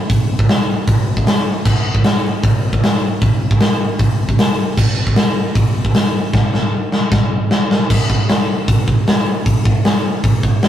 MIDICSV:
0, 0, Header, 1, 2, 480
1, 0, Start_track
1, 0, Tempo, 389864
1, 122, Time_signature, 4, 2, 24, 8
1, 13154, End_track
2, 0, Start_track
2, 0, Title_t, "Drums"
2, 120, Note_on_c, 9, 36, 107
2, 120, Note_on_c, 9, 46, 56
2, 243, Note_off_c, 9, 46, 0
2, 244, Note_off_c, 9, 36, 0
2, 480, Note_on_c, 9, 36, 88
2, 603, Note_off_c, 9, 36, 0
2, 604, Note_on_c, 9, 46, 57
2, 608, Note_on_c, 9, 38, 112
2, 727, Note_off_c, 9, 46, 0
2, 731, Note_off_c, 9, 38, 0
2, 1075, Note_on_c, 9, 46, 58
2, 1078, Note_on_c, 9, 36, 114
2, 1198, Note_off_c, 9, 46, 0
2, 1201, Note_off_c, 9, 36, 0
2, 1440, Note_on_c, 9, 36, 87
2, 1561, Note_on_c, 9, 46, 64
2, 1563, Note_off_c, 9, 36, 0
2, 1564, Note_on_c, 9, 38, 117
2, 1684, Note_off_c, 9, 46, 0
2, 1687, Note_off_c, 9, 38, 0
2, 2038, Note_on_c, 9, 36, 107
2, 2038, Note_on_c, 9, 49, 102
2, 2161, Note_off_c, 9, 36, 0
2, 2161, Note_off_c, 9, 49, 0
2, 2397, Note_on_c, 9, 36, 90
2, 2514, Note_on_c, 9, 46, 60
2, 2518, Note_on_c, 9, 38, 121
2, 2520, Note_off_c, 9, 36, 0
2, 2638, Note_off_c, 9, 46, 0
2, 2641, Note_off_c, 9, 38, 0
2, 2998, Note_on_c, 9, 36, 109
2, 2999, Note_on_c, 9, 46, 56
2, 3121, Note_off_c, 9, 36, 0
2, 3122, Note_off_c, 9, 46, 0
2, 3361, Note_on_c, 9, 36, 95
2, 3484, Note_off_c, 9, 36, 0
2, 3490, Note_on_c, 9, 46, 60
2, 3493, Note_on_c, 9, 38, 124
2, 3613, Note_off_c, 9, 46, 0
2, 3616, Note_off_c, 9, 38, 0
2, 3961, Note_on_c, 9, 36, 113
2, 3964, Note_on_c, 9, 46, 58
2, 4085, Note_off_c, 9, 36, 0
2, 4087, Note_off_c, 9, 46, 0
2, 4320, Note_on_c, 9, 36, 93
2, 4436, Note_on_c, 9, 46, 60
2, 4440, Note_on_c, 9, 38, 110
2, 4443, Note_off_c, 9, 36, 0
2, 4559, Note_off_c, 9, 46, 0
2, 4563, Note_off_c, 9, 38, 0
2, 4913, Note_on_c, 9, 46, 60
2, 4917, Note_on_c, 9, 36, 106
2, 5036, Note_off_c, 9, 46, 0
2, 5040, Note_off_c, 9, 36, 0
2, 5278, Note_on_c, 9, 36, 91
2, 5401, Note_off_c, 9, 36, 0
2, 5401, Note_on_c, 9, 46, 66
2, 5404, Note_on_c, 9, 38, 120
2, 5524, Note_off_c, 9, 46, 0
2, 5528, Note_off_c, 9, 38, 0
2, 5879, Note_on_c, 9, 36, 116
2, 5886, Note_on_c, 9, 57, 112
2, 6002, Note_off_c, 9, 36, 0
2, 6010, Note_off_c, 9, 57, 0
2, 6239, Note_on_c, 9, 36, 89
2, 6354, Note_on_c, 9, 46, 60
2, 6357, Note_on_c, 9, 38, 109
2, 6362, Note_off_c, 9, 36, 0
2, 6477, Note_off_c, 9, 46, 0
2, 6480, Note_off_c, 9, 38, 0
2, 6838, Note_on_c, 9, 36, 115
2, 6838, Note_on_c, 9, 46, 69
2, 6961, Note_off_c, 9, 46, 0
2, 6962, Note_off_c, 9, 36, 0
2, 7199, Note_on_c, 9, 36, 88
2, 7319, Note_on_c, 9, 46, 68
2, 7322, Note_off_c, 9, 36, 0
2, 7323, Note_on_c, 9, 38, 119
2, 7442, Note_off_c, 9, 46, 0
2, 7446, Note_off_c, 9, 38, 0
2, 7800, Note_on_c, 9, 36, 115
2, 7803, Note_on_c, 9, 38, 68
2, 7923, Note_off_c, 9, 36, 0
2, 7926, Note_off_c, 9, 38, 0
2, 8049, Note_on_c, 9, 38, 64
2, 8172, Note_off_c, 9, 38, 0
2, 8525, Note_on_c, 9, 38, 80
2, 8648, Note_off_c, 9, 38, 0
2, 8762, Note_on_c, 9, 36, 120
2, 8766, Note_on_c, 9, 38, 89
2, 8886, Note_off_c, 9, 36, 0
2, 8889, Note_off_c, 9, 38, 0
2, 9245, Note_on_c, 9, 38, 106
2, 9368, Note_off_c, 9, 38, 0
2, 9494, Note_on_c, 9, 38, 104
2, 9618, Note_off_c, 9, 38, 0
2, 9728, Note_on_c, 9, 36, 113
2, 9733, Note_on_c, 9, 49, 127
2, 9851, Note_off_c, 9, 36, 0
2, 9856, Note_off_c, 9, 49, 0
2, 9968, Note_on_c, 9, 36, 93
2, 10091, Note_off_c, 9, 36, 0
2, 10209, Note_on_c, 9, 46, 67
2, 10213, Note_on_c, 9, 38, 110
2, 10332, Note_off_c, 9, 46, 0
2, 10336, Note_off_c, 9, 38, 0
2, 10688, Note_on_c, 9, 36, 120
2, 10694, Note_on_c, 9, 46, 65
2, 10811, Note_off_c, 9, 36, 0
2, 10817, Note_off_c, 9, 46, 0
2, 10930, Note_on_c, 9, 36, 98
2, 11053, Note_off_c, 9, 36, 0
2, 11172, Note_on_c, 9, 46, 64
2, 11176, Note_on_c, 9, 38, 127
2, 11295, Note_off_c, 9, 46, 0
2, 11299, Note_off_c, 9, 38, 0
2, 11648, Note_on_c, 9, 36, 116
2, 11650, Note_on_c, 9, 46, 67
2, 11771, Note_off_c, 9, 36, 0
2, 11774, Note_off_c, 9, 46, 0
2, 11886, Note_on_c, 9, 36, 101
2, 12010, Note_off_c, 9, 36, 0
2, 12125, Note_on_c, 9, 46, 62
2, 12129, Note_on_c, 9, 38, 118
2, 12248, Note_off_c, 9, 46, 0
2, 12252, Note_off_c, 9, 38, 0
2, 12605, Note_on_c, 9, 36, 109
2, 12609, Note_on_c, 9, 46, 66
2, 12729, Note_off_c, 9, 36, 0
2, 12732, Note_off_c, 9, 46, 0
2, 12846, Note_on_c, 9, 36, 96
2, 12969, Note_off_c, 9, 36, 0
2, 13083, Note_on_c, 9, 46, 74
2, 13087, Note_on_c, 9, 38, 124
2, 13154, Note_off_c, 9, 38, 0
2, 13154, Note_off_c, 9, 46, 0
2, 13154, End_track
0, 0, End_of_file